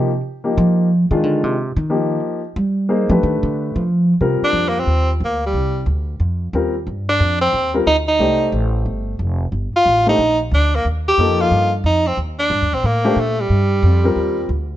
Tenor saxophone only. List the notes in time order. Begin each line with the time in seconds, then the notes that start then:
4.44 D4
4.69 A#3
4.79 C4
5.25 A#3
5.46 G3
7.09 D4
7.41 C4
7.87 D#4
8.08 D#4
9.76 F4
10.09 D#4
10.54 D4
10.76 A#3
11.08 G4
11.41 F4
11.86 D#4
12.07 C4
12.39 D4
12.74 C4
12.86 A#3
13.19 A3
13.40 G3